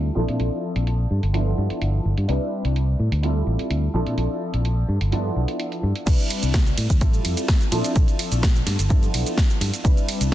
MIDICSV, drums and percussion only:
0, 0, Header, 1, 2, 480
1, 0, Start_track
1, 0, Key_signature, 0, "major"
1, 0, Tempo, 472441
1, 405, Time_signature, 4, 2, 24, 8
1, 10508, End_track
2, 0, Start_track
2, 0, Title_t, "Drums"
2, 289, Note_on_c, 9, 42, 46
2, 391, Note_off_c, 9, 42, 0
2, 403, Note_on_c, 9, 42, 60
2, 504, Note_off_c, 9, 42, 0
2, 771, Note_on_c, 9, 42, 47
2, 872, Note_off_c, 9, 42, 0
2, 884, Note_on_c, 9, 42, 60
2, 986, Note_off_c, 9, 42, 0
2, 1250, Note_on_c, 9, 42, 48
2, 1352, Note_off_c, 9, 42, 0
2, 1363, Note_on_c, 9, 42, 58
2, 1465, Note_off_c, 9, 42, 0
2, 1729, Note_on_c, 9, 42, 47
2, 1831, Note_off_c, 9, 42, 0
2, 1844, Note_on_c, 9, 42, 57
2, 1946, Note_off_c, 9, 42, 0
2, 2210, Note_on_c, 9, 42, 48
2, 2312, Note_off_c, 9, 42, 0
2, 2324, Note_on_c, 9, 42, 63
2, 2425, Note_off_c, 9, 42, 0
2, 2691, Note_on_c, 9, 42, 51
2, 2792, Note_off_c, 9, 42, 0
2, 2805, Note_on_c, 9, 42, 61
2, 2906, Note_off_c, 9, 42, 0
2, 3171, Note_on_c, 9, 42, 50
2, 3273, Note_off_c, 9, 42, 0
2, 3286, Note_on_c, 9, 42, 64
2, 3387, Note_off_c, 9, 42, 0
2, 3650, Note_on_c, 9, 42, 50
2, 3752, Note_off_c, 9, 42, 0
2, 3764, Note_on_c, 9, 42, 62
2, 3866, Note_off_c, 9, 42, 0
2, 4130, Note_on_c, 9, 42, 49
2, 4232, Note_off_c, 9, 42, 0
2, 4244, Note_on_c, 9, 42, 66
2, 4345, Note_off_c, 9, 42, 0
2, 4609, Note_on_c, 9, 42, 53
2, 4711, Note_off_c, 9, 42, 0
2, 4724, Note_on_c, 9, 42, 65
2, 4825, Note_off_c, 9, 42, 0
2, 5090, Note_on_c, 9, 42, 54
2, 5192, Note_off_c, 9, 42, 0
2, 5205, Note_on_c, 9, 42, 62
2, 5307, Note_off_c, 9, 42, 0
2, 5570, Note_on_c, 9, 42, 52
2, 5671, Note_off_c, 9, 42, 0
2, 5685, Note_on_c, 9, 42, 64
2, 5787, Note_off_c, 9, 42, 0
2, 5811, Note_on_c, 9, 42, 37
2, 5913, Note_off_c, 9, 42, 0
2, 6050, Note_on_c, 9, 42, 52
2, 6152, Note_off_c, 9, 42, 0
2, 6165, Note_on_c, 9, 42, 56
2, 6165, Note_on_c, 9, 49, 104
2, 6166, Note_on_c, 9, 36, 117
2, 6169, Note_on_c, 9, 82, 56
2, 6267, Note_off_c, 9, 42, 0
2, 6267, Note_off_c, 9, 49, 0
2, 6268, Note_off_c, 9, 36, 0
2, 6270, Note_off_c, 9, 82, 0
2, 6291, Note_on_c, 9, 42, 27
2, 6294, Note_on_c, 9, 82, 33
2, 6392, Note_off_c, 9, 42, 0
2, 6396, Note_off_c, 9, 82, 0
2, 6405, Note_on_c, 9, 46, 102
2, 6405, Note_on_c, 9, 51, 74
2, 6507, Note_off_c, 9, 46, 0
2, 6507, Note_off_c, 9, 51, 0
2, 6530, Note_on_c, 9, 42, 56
2, 6533, Note_on_c, 9, 82, 66
2, 6632, Note_off_c, 9, 42, 0
2, 6635, Note_off_c, 9, 82, 0
2, 6644, Note_on_c, 9, 38, 120
2, 6645, Note_on_c, 9, 42, 56
2, 6646, Note_on_c, 9, 36, 117
2, 6649, Note_on_c, 9, 82, 56
2, 6746, Note_off_c, 9, 38, 0
2, 6747, Note_off_c, 9, 36, 0
2, 6747, Note_off_c, 9, 42, 0
2, 6750, Note_off_c, 9, 82, 0
2, 6771, Note_on_c, 9, 42, 28
2, 6775, Note_on_c, 9, 82, 31
2, 6873, Note_off_c, 9, 42, 0
2, 6876, Note_off_c, 9, 82, 0
2, 6884, Note_on_c, 9, 46, 106
2, 6884, Note_on_c, 9, 51, 73
2, 6985, Note_off_c, 9, 46, 0
2, 6985, Note_off_c, 9, 51, 0
2, 7011, Note_on_c, 9, 42, 56
2, 7012, Note_on_c, 9, 36, 62
2, 7014, Note_on_c, 9, 82, 65
2, 7112, Note_off_c, 9, 42, 0
2, 7113, Note_off_c, 9, 36, 0
2, 7116, Note_off_c, 9, 82, 0
2, 7123, Note_on_c, 9, 42, 55
2, 7126, Note_on_c, 9, 36, 117
2, 7127, Note_on_c, 9, 82, 54
2, 7225, Note_off_c, 9, 42, 0
2, 7228, Note_off_c, 9, 36, 0
2, 7229, Note_off_c, 9, 82, 0
2, 7249, Note_on_c, 9, 42, 28
2, 7252, Note_on_c, 9, 82, 34
2, 7350, Note_off_c, 9, 42, 0
2, 7354, Note_off_c, 9, 82, 0
2, 7363, Note_on_c, 9, 46, 110
2, 7363, Note_on_c, 9, 51, 79
2, 7465, Note_off_c, 9, 46, 0
2, 7465, Note_off_c, 9, 51, 0
2, 7490, Note_on_c, 9, 42, 57
2, 7494, Note_on_c, 9, 82, 66
2, 7592, Note_off_c, 9, 42, 0
2, 7595, Note_off_c, 9, 82, 0
2, 7604, Note_on_c, 9, 38, 121
2, 7605, Note_on_c, 9, 42, 56
2, 7606, Note_on_c, 9, 36, 118
2, 7608, Note_on_c, 9, 82, 55
2, 7706, Note_off_c, 9, 38, 0
2, 7706, Note_off_c, 9, 42, 0
2, 7707, Note_off_c, 9, 36, 0
2, 7710, Note_off_c, 9, 82, 0
2, 7729, Note_on_c, 9, 42, 27
2, 7733, Note_on_c, 9, 82, 34
2, 7831, Note_off_c, 9, 42, 0
2, 7834, Note_off_c, 9, 82, 0
2, 7843, Note_on_c, 9, 46, 110
2, 7843, Note_on_c, 9, 51, 77
2, 7945, Note_off_c, 9, 46, 0
2, 7945, Note_off_c, 9, 51, 0
2, 7970, Note_on_c, 9, 42, 55
2, 7973, Note_on_c, 9, 82, 68
2, 8071, Note_off_c, 9, 42, 0
2, 8075, Note_off_c, 9, 82, 0
2, 8083, Note_on_c, 9, 42, 53
2, 8086, Note_on_c, 9, 36, 127
2, 8087, Note_on_c, 9, 82, 52
2, 8185, Note_off_c, 9, 42, 0
2, 8187, Note_off_c, 9, 36, 0
2, 8188, Note_off_c, 9, 82, 0
2, 8209, Note_on_c, 9, 42, 27
2, 8213, Note_on_c, 9, 82, 33
2, 8311, Note_off_c, 9, 42, 0
2, 8314, Note_off_c, 9, 82, 0
2, 8323, Note_on_c, 9, 46, 103
2, 8323, Note_on_c, 9, 51, 69
2, 8424, Note_off_c, 9, 46, 0
2, 8424, Note_off_c, 9, 51, 0
2, 8450, Note_on_c, 9, 42, 56
2, 8453, Note_on_c, 9, 82, 66
2, 8551, Note_off_c, 9, 42, 0
2, 8555, Note_off_c, 9, 82, 0
2, 8565, Note_on_c, 9, 38, 123
2, 8566, Note_on_c, 9, 36, 122
2, 8566, Note_on_c, 9, 42, 55
2, 8569, Note_on_c, 9, 82, 55
2, 8667, Note_off_c, 9, 38, 0
2, 8667, Note_off_c, 9, 42, 0
2, 8668, Note_off_c, 9, 36, 0
2, 8671, Note_off_c, 9, 82, 0
2, 8691, Note_on_c, 9, 42, 27
2, 8695, Note_on_c, 9, 82, 32
2, 8793, Note_off_c, 9, 42, 0
2, 8797, Note_off_c, 9, 82, 0
2, 8805, Note_on_c, 9, 38, 39
2, 8805, Note_on_c, 9, 46, 110
2, 8805, Note_on_c, 9, 51, 74
2, 8906, Note_off_c, 9, 38, 0
2, 8907, Note_off_c, 9, 46, 0
2, 8907, Note_off_c, 9, 51, 0
2, 8932, Note_on_c, 9, 42, 55
2, 8935, Note_on_c, 9, 82, 64
2, 9033, Note_off_c, 9, 42, 0
2, 9037, Note_off_c, 9, 82, 0
2, 9045, Note_on_c, 9, 42, 53
2, 9046, Note_on_c, 9, 36, 124
2, 9049, Note_on_c, 9, 82, 54
2, 9147, Note_off_c, 9, 42, 0
2, 9148, Note_off_c, 9, 36, 0
2, 9151, Note_off_c, 9, 82, 0
2, 9172, Note_on_c, 9, 42, 26
2, 9176, Note_on_c, 9, 82, 34
2, 9274, Note_off_c, 9, 42, 0
2, 9277, Note_off_c, 9, 82, 0
2, 9286, Note_on_c, 9, 46, 114
2, 9286, Note_on_c, 9, 51, 75
2, 9388, Note_off_c, 9, 46, 0
2, 9388, Note_off_c, 9, 51, 0
2, 9413, Note_on_c, 9, 42, 54
2, 9416, Note_on_c, 9, 82, 66
2, 9514, Note_off_c, 9, 42, 0
2, 9518, Note_off_c, 9, 82, 0
2, 9526, Note_on_c, 9, 36, 127
2, 9526, Note_on_c, 9, 38, 118
2, 9527, Note_on_c, 9, 42, 53
2, 9531, Note_on_c, 9, 82, 53
2, 9627, Note_off_c, 9, 36, 0
2, 9628, Note_off_c, 9, 38, 0
2, 9629, Note_off_c, 9, 42, 0
2, 9632, Note_off_c, 9, 82, 0
2, 9651, Note_on_c, 9, 42, 27
2, 9655, Note_on_c, 9, 82, 33
2, 9753, Note_off_c, 9, 42, 0
2, 9757, Note_off_c, 9, 82, 0
2, 9767, Note_on_c, 9, 46, 111
2, 9767, Note_on_c, 9, 51, 77
2, 9869, Note_off_c, 9, 46, 0
2, 9869, Note_off_c, 9, 51, 0
2, 9891, Note_on_c, 9, 42, 52
2, 9895, Note_on_c, 9, 82, 66
2, 9993, Note_off_c, 9, 42, 0
2, 9996, Note_off_c, 9, 82, 0
2, 10005, Note_on_c, 9, 42, 52
2, 10006, Note_on_c, 9, 36, 127
2, 10009, Note_on_c, 9, 82, 54
2, 10107, Note_off_c, 9, 36, 0
2, 10107, Note_off_c, 9, 42, 0
2, 10111, Note_off_c, 9, 82, 0
2, 10132, Note_on_c, 9, 42, 26
2, 10136, Note_on_c, 9, 82, 32
2, 10234, Note_off_c, 9, 42, 0
2, 10238, Note_off_c, 9, 82, 0
2, 10246, Note_on_c, 9, 46, 108
2, 10246, Note_on_c, 9, 51, 71
2, 10348, Note_off_c, 9, 46, 0
2, 10348, Note_off_c, 9, 51, 0
2, 10372, Note_on_c, 9, 42, 53
2, 10376, Note_on_c, 9, 82, 66
2, 10474, Note_off_c, 9, 42, 0
2, 10477, Note_off_c, 9, 82, 0
2, 10508, End_track
0, 0, End_of_file